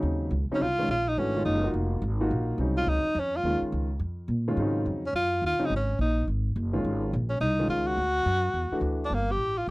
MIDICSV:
0, 0, Header, 1, 5, 480
1, 0, Start_track
1, 0, Tempo, 283554
1, 64, Time_signature, 4, 2, 24, 8
1, 16425, End_track
2, 0, Start_track
2, 0, Title_t, "Tenor saxophone"
2, 0, Program_c, 0, 66
2, 926, Note_on_c, 0, 61, 80
2, 1051, Note_on_c, 0, 65, 102
2, 1076, Note_off_c, 0, 61, 0
2, 1519, Note_off_c, 0, 65, 0
2, 1531, Note_on_c, 0, 65, 97
2, 1833, Note_on_c, 0, 63, 86
2, 1858, Note_off_c, 0, 65, 0
2, 2003, Note_on_c, 0, 61, 86
2, 2028, Note_off_c, 0, 63, 0
2, 2447, Note_off_c, 0, 61, 0
2, 2457, Note_on_c, 0, 63, 79
2, 2909, Note_off_c, 0, 63, 0
2, 4691, Note_on_c, 0, 65, 93
2, 4888, Note_on_c, 0, 63, 93
2, 4913, Note_off_c, 0, 65, 0
2, 5407, Note_on_c, 0, 61, 84
2, 5432, Note_off_c, 0, 63, 0
2, 5691, Note_on_c, 0, 65, 93
2, 5716, Note_off_c, 0, 61, 0
2, 6148, Note_off_c, 0, 65, 0
2, 8575, Note_on_c, 0, 61, 82
2, 8713, Note_off_c, 0, 61, 0
2, 8723, Note_on_c, 0, 65, 101
2, 9162, Note_off_c, 0, 65, 0
2, 9242, Note_on_c, 0, 65, 97
2, 9575, Note_on_c, 0, 63, 92
2, 9600, Note_off_c, 0, 65, 0
2, 9712, Note_off_c, 0, 63, 0
2, 9749, Note_on_c, 0, 61, 86
2, 10157, Note_off_c, 0, 61, 0
2, 10173, Note_on_c, 0, 63, 79
2, 10607, Note_off_c, 0, 63, 0
2, 12345, Note_on_c, 0, 61, 78
2, 12522, Note_off_c, 0, 61, 0
2, 12536, Note_on_c, 0, 63, 90
2, 12986, Note_off_c, 0, 63, 0
2, 13027, Note_on_c, 0, 65, 94
2, 13320, Note_on_c, 0, 66, 112
2, 13346, Note_off_c, 0, 65, 0
2, 14944, Note_off_c, 0, 66, 0
2, 15322, Note_on_c, 0, 62, 84
2, 15471, Note_on_c, 0, 58, 81
2, 15496, Note_off_c, 0, 62, 0
2, 15763, Note_on_c, 0, 67, 92
2, 15788, Note_off_c, 0, 58, 0
2, 16215, Note_on_c, 0, 65, 73
2, 16241, Note_off_c, 0, 67, 0
2, 16384, Note_off_c, 0, 65, 0
2, 16425, End_track
3, 0, Start_track
3, 0, Title_t, "Grand piano"
3, 0, Program_c, 1, 0
3, 0, Note_on_c, 1, 49, 63
3, 0, Note_on_c, 1, 54, 55
3, 0, Note_on_c, 1, 60, 57
3, 0, Note_on_c, 1, 63, 68
3, 515, Note_off_c, 1, 49, 0
3, 516, Note_off_c, 1, 54, 0
3, 517, Note_off_c, 1, 63, 0
3, 520, Note_off_c, 1, 60, 0
3, 872, Note_on_c, 1, 49, 71
3, 875, Note_on_c, 1, 60, 65
3, 877, Note_on_c, 1, 54, 65
3, 883, Note_on_c, 1, 63, 80
3, 1022, Note_off_c, 1, 49, 0
3, 1023, Note_off_c, 1, 60, 0
3, 1024, Note_off_c, 1, 54, 0
3, 1028, Note_off_c, 1, 63, 0
3, 1331, Note_on_c, 1, 51, 68
3, 1338, Note_on_c, 1, 65, 77
3, 1339, Note_on_c, 1, 56, 60
3, 1341, Note_on_c, 1, 61, 63
3, 1491, Note_off_c, 1, 51, 0
3, 1495, Note_off_c, 1, 65, 0
3, 1496, Note_off_c, 1, 56, 0
3, 1497, Note_off_c, 1, 61, 0
3, 2003, Note_on_c, 1, 52, 63
3, 2009, Note_on_c, 1, 57, 54
3, 2011, Note_on_c, 1, 62, 52
3, 2017, Note_on_c, 1, 66, 66
3, 2263, Note_off_c, 1, 52, 0
3, 2266, Note_off_c, 1, 57, 0
3, 2268, Note_off_c, 1, 62, 0
3, 2271, Note_off_c, 1, 66, 0
3, 2299, Note_on_c, 1, 56, 55
3, 2301, Note_on_c, 1, 51, 64
3, 2303, Note_on_c, 1, 61, 61
3, 2308, Note_on_c, 1, 65, 73
3, 2713, Note_off_c, 1, 56, 0
3, 2714, Note_off_c, 1, 51, 0
3, 2715, Note_off_c, 1, 61, 0
3, 2718, Note_off_c, 1, 65, 0
3, 2767, Note_on_c, 1, 58, 62
3, 2771, Note_on_c, 1, 63, 60
3, 2772, Note_on_c, 1, 65, 67
3, 2781, Note_on_c, 1, 66, 74
3, 3392, Note_off_c, 1, 58, 0
3, 3394, Note_off_c, 1, 63, 0
3, 3395, Note_off_c, 1, 65, 0
3, 3399, Note_off_c, 1, 66, 0
3, 3733, Note_on_c, 1, 65, 76
3, 3735, Note_on_c, 1, 58, 70
3, 3742, Note_on_c, 1, 63, 68
3, 3744, Note_on_c, 1, 66, 81
3, 4356, Note_off_c, 1, 58, 0
3, 4356, Note_off_c, 1, 65, 0
3, 4360, Note_off_c, 1, 63, 0
3, 4361, Note_off_c, 1, 66, 0
3, 4392, Note_on_c, 1, 49, 56
3, 4395, Note_on_c, 1, 60, 52
3, 4401, Note_on_c, 1, 54, 54
3, 4416, Note_on_c, 1, 63, 63
3, 5109, Note_off_c, 1, 49, 0
3, 5110, Note_off_c, 1, 60, 0
3, 5113, Note_off_c, 1, 54, 0
3, 5121, Note_off_c, 1, 63, 0
3, 5842, Note_on_c, 1, 51, 63
3, 5844, Note_on_c, 1, 56, 57
3, 5847, Note_on_c, 1, 61, 55
3, 5855, Note_on_c, 1, 65, 68
3, 6553, Note_off_c, 1, 51, 0
3, 6554, Note_off_c, 1, 56, 0
3, 6556, Note_off_c, 1, 61, 0
3, 6560, Note_off_c, 1, 65, 0
3, 7580, Note_on_c, 1, 51, 76
3, 7580, Note_on_c, 1, 56, 72
3, 7582, Note_on_c, 1, 61, 68
3, 7584, Note_on_c, 1, 65, 82
3, 7775, Note_on_c, 1, 49, 61
3, 7776, Note_on_c, 1, 54, 59
3, 7779, Note_on_c, 1, 60, 55
3, 7780, Note_on_c, 1, 63, 69
3, 8198, Note_off_c, 1, 51, 0
3, 8198, Note_off_c, 1, 56, 0
3, 8199, Note_off_c, 1, 61, 0
3, 8200, Note_off_c, 1, 65, 0
3, 8479, Note_off_c, 1, 49, 0
3, 8480, Note_off_c, 1, 54, 0
3, 8481, Note_off_c, 1, 60, 0
3, 8482, Note_off_c, 1, 63, 0
3, 9465, Note_on_c, 1, 60, 62
3, 9467, Note_on_c, 1, 49, 67
3, 9471, Note_on_c, 1, 54, 62
3, 9474, Note_on_c, 1, 63, 74
3, 9639, Note_off_c, 1, 49, 0
3, 9639, Note_off_c, 1, 60, 0
3, 9642, Note_off_c, 1, 54, 0
3, 9643, Note_off_c, 1, 63, 0
3, 11395, Note_on_c, 1, 56, 66
3, 11398, Note_on_c, 1, 51, 69
3, 11398, Note_on_c, 1, 61, 65
3, 11407, Note_on_c, 1, 65, 81
3, 12024, Note_off_c, 1, 56, 0
3, 12026, Note_off_c, 1, 51, 0
3, 12026, Note_off_c, 1, 61, 0
3, 12031, Note_off_c, 1, 65, 0
3, 12851, Note_on_c, 1, 51, 58
3, 12854, Note_on_c, 1, 56, 55
3, 12854, Note_on_c, 1, 65, 69
3, 12864, Note_on_c, 1, 61, 56
3, 13472, Note_off_c, 1, 51, 0
3, 13474, Note_off_c, 1, 56, 0
3, 13474, Note_off_c, 1, 65, 0
3, 13479, Note_off_c, 1, 61, 0
3, 14764, Note_on_c, 1, 57, 65
3, 14766, Note_on_c, 1, 52, 69
3, 14766, Note_on_c, 1, 66, 75
3, 14769, Note_on_c, 1, 62, 62
3, 15390, Note_off_c, 1, 57, 0
3, 15390, Note_off_c, 1, 66, 0
3, 15391, Note_off_c, 1, 52, 0
3, 15392, Note_off_c, 1, 62, 0
3, 16425, End_track
4, 0, Start_track
4, 0, Title_t, "Upright bass"
4, 0, Program_c, 2, 32
4, 42, Note_on_c, 2, 39, 78
4, 509, Note_off_c, 2, 39, 0
4, 519, Note_on_c, 2, 37, 84
4, 809, Note_off_c, 2, 37, 0
4, 1019, Note_on_c, 2, 36, 73
4, 1484, Note_off_c, 2, 36, 0
4, 1494, Note_on_c, 2, 34, 85
4, 1966, Note_off_c, 2, 34, 0
4, 1991, Note_on_c, 2, 32, 76
4, 2455, Note_off_c, 2, 32, 0
4, 2466, Note_on_c, 2, 30, 81
4, 2933, Note_off_c, 2, 30, 0
4, 2939, Note_on_c, 2, 29, 81
4, 3404, Note_off_c, 2, 29, 0
4, 3414, Note_on_c, 2, 32, 86
4, 3887, Note_off_c, 2, 32, 0
4, 3904, Note_on_c, 2, 34, 80
4, 4355, Note_off_c, 2, 34, 0
4, 4365, Note_on_c, 2, 36, 82
4, 4842, Note_off_c, 2, 36, 0
4, 4852, Note_on_c, 2, 37, 80
4, 5137, Note_off_c, 2, 37, 0
4, 5329, Note_on_c, 2, 41, 90
4, 5804, Note_off_c, 2, 41, 0
4, 5815, Note_on_c, 2, 39, 77
4, 6098, Note_off_c, 2, 39, 0
4, 6302, Note_on_c, 2, 37, 83
4, 6753, Note_off_c, 2, 37, 0
4, 6764, Note_on_c, 2, 41, 82
4, 7234, Note_off_c, 2, 41, 0
4, 7244, Note_on_c, 2, 46, 81
4, 7721, Note_off_c, 2, 46, 0
4, 7734, Note_on_c, 2, 44, 79
4, 8206, Note_off_c, 2, 44, 0
4, 8222, Note_on_c, 2, 41, 80
4, 8670, Note_off_c, 2, 41, 0
4, 8680, Note_on_c, 2, 42, 77
4, 9158, Note_off_c, 2, 42, 0
4, 9172, Note_on_c, 2, 39, 80
4, 9456, Note_off_c, 2, 39, 0
4, 9648, Note_on_c, 2, 32, 74
4, 10122, Note_off_c, 2, 32, 0
4, 10137, Note_on_c, 2, 34, 83
4, 10607, Note_off_c, 2, 34, 0
4, 10624, Note_on_c, 2, 32, 80
4, 11090, Note_off_c, 2, 32, 0
4, 11101, Note_on_c, 2, 30, 85
4, 11569, Note_off_c, 2, 30, 0
4, 11588, Note_on_c, 2, 32, 85
4, 12052, Note_off_c, 2, 32, 0
4, 12075, Note_on_c, 2, 34, 91
4, 12524, Note_off_c, 2, 34, 0
4, 12534, Note_on_c, 2, 36, 86
4, 12996, Note_off_c, 2, 36, 0
4, 13006, Note_on_c, 2, 37, 88
4, 13481, Note_off_c, 2, 37, 0
4, 13502, Note_on_c, 2, 38, 80
4, 13969, Note_off_c, 2, 38, 0
4, 13976, Note_on_c, 2, 42, 85
4, 14442, Note_off_c, 2, 42, 0
4, 14452, Note_on_c, 2, 40, 77
4, 14735, Note_off_c, 2, 40, 0
4, 14911, Note_on_c, 2, 38, 83
4, 15394, Note_off_c, 2, 38, 0
4, 15405, Note_on_c, 2, 31, 71
4, 15856, Note_off_c, 2, 31, 0
4, 15866, Note_on_c, 2, 33, 73
4, 16351, Note_off_c, 2, 33, 0
4, 16425, End_track
5, 0, Start_track
5, 0, Title_t, "Muted upright bass strokes"
5, 845, Note_on_c, 9, 29, 36
5, 1014, Note_off_c, 9, 29, 0
5, 5151, Note_on_c, 9, 29, 40
5, 5320, Note_off_c, 9, 29, 0
5, 6120, Note_on_c, 9, 29, 35
5, 6289, Note_off_c, 9, 29, 0
5, 9465, Note_on_c, 9, 29, 36
5, 9634, Note_off_c, 9, 29, 0
5, 14746, Note_on_c, 9, 29, 39
5, 14915, Note_off_c, 9, 29, 0
5, 16425, End_track
0, 0, End_of_file